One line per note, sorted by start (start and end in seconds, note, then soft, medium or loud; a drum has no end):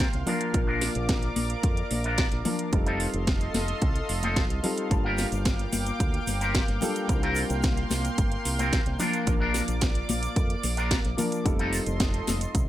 0.00 0.24 G3 medium
0.00 0.23 A#3 medium
0.00 0.24 C4 medium
0.00 0.24 D4 medium
0.00 0.24 F4 medium
0.00 0.25 A#4 medium
0.00 2.69 F5 medium
0.00 0.23 G5 medium
0.00 0.25 C6 medium
0.00 kick loud
0.00 snare loud
0.00 closed hi-hat medium
0.13 0.23 C2 medium
0.13 closed hi-hat soft
0.26 0.51 F3 medium
0.26 0.51 A#3 medium
0.26 0.60 D4 medium
0.26 0.51 D4 medium
0.26 0.51 F4 medium
0.26 0.60 F4 medium
0.26 2.70 A#4 medium
0.26 0.51 A#4 medium
0.26 0.60 A#4 loud
0.26 2.70 D5 medium
0.26 2.70 D6 medium
0.26 open hi-hat loud
0.26 low conga medium
0.41 closed hi-hat soft
0.53 0.87 A#1 medium
0.53 2.42 F3 medium
0.53 2.42 A#3 medium
0.53 2.42 D4 medium
0.53 2.42 F4 medium
0.53 2.43 A#4 medium
0.53 kick loud
0.53 closed hi-hat medium
0.67 0.88 D4 medium
0.67 0.88 F4 medium
0.67 0.89 A#4 medium
0.81 snare medium
0.81 open hi-hat loud
0.95 1.29 A#1 medium
0.95 closed hi-hat soft
1.08 muted clean electric guitar stroke soft
1.08 kick loud
1.08 snare loud
1.08 closed hi-hat medium
1.23 closed hi-hat soft
1.36 1.54 A#1 medium
1.36 open hi-hat loud
1.36 high conga medium
1.50 closed hi-hat soft
1.63 1.81 F2 medium
1.63 muted clean electric guitar stroke medium
1.63 kick loud
1.63 closed hi-hat medium
1.77 muted clean electric guitar stroke soft
1.77 closed hi-hat soft
1.91 2.24 A#1 medium
1.91 open hi-hat loud
1.91 high conga medium
2.04 2.25 D4 medium
2.04 2.25 F4 medium
2.04 2.26 A#4 medium
2.04 closed hi-hat soft
2.18 kick loud
2.18 snare loud
2.18 closed hi-hat medium
2.32 2.41 A#1 medium
2.32 closed hi-hat soft
2.45 2.69 F3 medium
2.45 2.69 A#3 medium
2.45 2.69 D4 medium
2.45 2.70 F4 medium
2.45 2.70 A#4 medium
2.45 muted clean electric guitar stroke soft
2.45 open hi-hat medium
2.45 high conga medium
2.45 low conga medium
2.59 closed hi-hat soft
2.72 3.06 F1 medium
2.72 4.60 G3 medium
2.72 4.60 C4 medium
2.72 4.61 D#4 medium
2.72 4.61 F4 medium
2.72 4.89 A4 medium
2.72 4.61 A4 medium
2.72 4.89 D#5 medium
2.72 12.69 F5 medium
2.72 4.89 C6 medium
2.72 muted clean electric guitar stroke loud
2.72 kick loud
2.72 closed hi-hat medium
2.86 3.07 D#4 medium
2.86 3.07 F4 medium
2.86 3.07 A4 medium
2.86 closed hi-hat soft
3.00 open hi-hat loud
3.14 3.47 F1 medium
3.14 closed hi-hat soft
3.27 muted clean electric guitar stroke soft
3.27 kick loud
3.27 snare loud
3.27 closed hi-hat medium
3.41 closed hi-hat soft
3.54 3.72 F1 medium
3.54 snare medium
3.54 open hi-hat loud
3.54 high conga medium
3.68 closed hi-hat soft
3.82 3.99 C2 medium
3.82 muted clean electric guitar stroke medium
3.82 kick loud
3.82 closed hi-hat medium
3.95 muted clean electric guitar stroke soft
3.95 closed hi-hat soft
4.09 4.50 F1 medium
4.09 open hi-hat loud
4.23 4.43 D#4 medium
4.23 4.44 F4 medium
4.23 4.44 A4 medium
4.23 closed hi-hat soft
4.23 high conga medium
4.36 kick loud
4.36 snare loud
4.36 closed hi-hat medium
4.50 4.59 C2 medium
4.50 closed hi-hat soft
4.63 4.87 G3 medium
4.63 4.88 C4 medium
4.63 4.88 D#4 medium
4.63 4.88 F4 medium
4.63 4.88 A4 medium
4.63 muted clean electric guitar stroke soft
4.63 open hi-hat loud
4.63 low conga medium
4.78 closed hi-hat soft
4.90 5.24 G1 medium
4.90 6.78 G3 medium
4.90 6.78 A#3 medium
4.90 11.42 A#3 medium
4.90 6.79 D4 medium
4.90 6.79 F4 medium
4.90 8.96 G5 medium
4.90 6.79 A5 medium
4.90 7.07 D6 medium
4.90 muted clean electric guitar stroke loud
4.90 kick loud
4.90 closed hi-hat medium
4.90 shaker soft
5.05 5.25 F4 medium
5.05 5.25 G4 medium
5.05 5.26 A#4 medium
5.18 snare medium
5.18 open hi-hat medium
5.18 shaker medium
5.32 5.65 G1 medium
5.32 closed hi-hat soft
5.32 shaker soft
5.45 muted clean electric guitar stroke soft
5.45 kick loud
5.45 snare loud
5.45 closed hi-hat medium
5.45 shaker soft
5.59 closed hi-hat soft
5.73 5.90 G1 medium
5.73 open hi-hat loud
5.73 high conga medium
5.73 shaker medium
5.86 closed hi-hat soft
5.86 shaker soft
6.00 6.17 D2 medium
6.00 muted clean electric guitar stroke medium
6.00 kick loud
6.00 closed hi-hat medium
6.00 shaker soft
6.14 muted clean electric guitar stroke soft
6.14 closed hi-hat soft
6.27 6.60 G1 medium
6.27 open hi-hat loud
6.27 high conga medium
6.27 shaker medium
6.40 6.61 F4 medium
6.40 6.62 G4 medium
6.40 6.62 A#4 medium
6.40 closed hi-hat soft
6.40 shaker soft
6.55 kick loud
6.55 snare loud
6.55 closed hi-hat medium
6.55 shaker soft
6.68 6.77 G1 medium
6.68 closed hi-hat soft
6.81 7.06 G3 medium
6.81 7.06 A#3 medium
6.81 7.06 D4 medium
6.81 7.06 F4 medium
6.81 7.06 A4 medium
6.81 muted clean electric guitar stroke soft
6.81 open hi-hat medium
6.81 high conga medium
6.81 low conga medium
6.81 shaker medium
6.96 closed hi-hat soft
6.96 shaker soft
7.08 7.42 C2 medium
7.08 8.96 G3 medium
7.08 8.97 A#3 medium
7.08 8.97 C4 medium
7.08 8.97 D4 medium
7.08 8.97 F4 medium
7.08 8.98 C6 medium
7.08 muted clean electric guitar stroke loud
7.08 kick loud
7.08 closed hi-hat medium
7.08 shaker soft
7.22 7.43 C4 medium
7.22 7.43 F4 medium
7.22 7.44 A#4 medium
7.22 closed hi-hat soft
7.35 open hi-hat medium
7.35 shaker medium
7.50 7.83 C2 loud
7.50 closed hi-hat soft
7.50 shaker medium
7.62 muted clean electric guitar stroke soft
7.62 kick loud
7.62 snare loud
7.62 closed hi-hat medium
7.62 shaker soft
7.77 closed hi-hat soft
7.91 8.08 C2 medium
7.91 snare medium
7.91 open hi-hat loud
7.91 high conga medium
7.91 shaker medium
8.05 closed hi-hat soft
8.05 shaker medium
8.17 8.36 G1 medium
8.17 muted clean electric guitar stroke medium
8.17 kick loud
8.17 closed hi-hat medium
8.17 shaker soft
8.31 muted clean electric guitar stroke soft
8.31 closed hi-hat soft
8.45 8.78 C2 medium
8.45 open hi-hat loud
8.45 shaker medium
8.59 8.79 C4 medium
8.59 8.80 F4 medium
8.59 8.80 A#4 medium
8.59 closed hi-hat medium
8.59 high conga medium
8.59 shaker soft
8.73 kick loud
8.73 snare loud
8.73 closed hi-hat medium
8.73 shaker soft
8.86 8.95 C2 medium
8.86 closed hi-hat soft
8.99 9.24 F3 medium
8.99 9.24 A#3 medium
8.99 9.33 D4 medium
8.99 9.24 D4 medium
8.99 9.33 F4 medium
8.99 9.24 F4 medium
8.99 9.24 A#4 medium
8.99 9.33 A#4 loud
8.99 11.43 D5 medium
8.99 11.43 D6 medium
8.99 open hi-hat medium
8.99 low conga medium
8.99 shaker medium
9.13 closed hi-hat soft
9.13 shaker medium
9.26 9.60 A#1 loud
9.26 11.14 F3 medium
9.26 11.15 A#3 medium
9.26 11.15 D4 medium
9.26 11.15 F4 medium
9.26 11.15 A#4 medium
9.26 kick loud
9.26 closed hi-hat medium
9.26 shaker soft
9.40 9.61 D4 medium
9.40 9.62 F4 medium
9.40 9.62 A#4 medium
9.54 snare medium
9.54 open hi-hat medium
9.54 shaker medium
9.68 10.01 A#1 loud
9.68 closed hi-hat medium
9.68 shaker medium
9.81 muted clean electric guitar stroke soft
9.81 kick loud
9.81 snare loud
9.81 closed hi-hat medium
9.81 shaker soft
9.95 closed hi-hat soft
10.09 10.27 A#1 medium
10.09 open hi-hat loud
10.09 high conga medium
10.09 shaker medium
10.23 closed hi-hat medium
10.23 shaker medium
10.36 10.54 F2 medium
10.36 muted clean electric guitar stroke medium
10.36 kick loud
10.36 closed hi-hat medium
10.36 shaker soft
10.50 muted clean electric guitar stroke soft
10.50 closed hi-hat soft
10.63 10.97 A#1 medium
10.63 open hi-hat loud
10.63 high conga medium
10.63 shaker medium
10.77 10.98 D4 medium
10.77 10.98 F4 medium
10.77 10.98 A#4 medium
10.77 closed hi-hat medium
10.77 shaker soft
10.91 kick loud
10.91 snare loud
10.91 closed hi-hat medium
10.91 shaker soft
11.05 11.13 A#1 medium
11.05 closed hi-hat soft
11.17 11.42 F3 medium
11.17 11.42 A#3 medium
11.17 11.42 D4 medium
11.17 11.42 F4 medium
11.17 11.42 A#4 medium
11.17 muted clean electric guitar stroke soft
11.17 open hi-hat medium
11.17 high conga medium
11.17 low conga medium
11.17 shaker medium
11.32 closed hi-hat medium
11.32 shaker soft
11.44 11.79 F1 loud
11.44 12.69 G3 medium
11.44 12.69 C4 medium
11.44 12.69 D#4 medium
11.44 12.69 F4 medium
11.44 12.69 A4 medium
11.44 12.69 D#5 medium
11.44 12.69 C6 medium
11.44 muted clean electric guitar stroke loud
11.44 kick loud
11.44 closed hi-hat medium
11.44 shaker soft
11.59 11.80 D#4 medium
11.59 11.80 F4 medium
11.59 11.80 A4 medium
11.59 closed hi-hat soft
11.73 open hi-hat medium
11.73 shaker medium
11.86 12.20 F1 loud
11.86 closed hi-hat medium
11.86 shaker soft
12.00 muted clean electric guitar stroke soft
12.00 kick loud
12.00 snare loud
12.00 closed hi-hat medium
12.00 shaker soft
12.14 closed hi-hat soft
12.27 12.45 F1 medium
12.27 snare medium
12.27 open hi-hat loud
12.27 high conga medium
12.27 shaker medium
12.41 closed hi-hat medium
12.41 shaker soft
12.54 12.69 C2 medium
12.54 muted clean electric guitar stroke medium
12.54 kick loud
12.54 closed hi-hat medium
12.54 shaker soft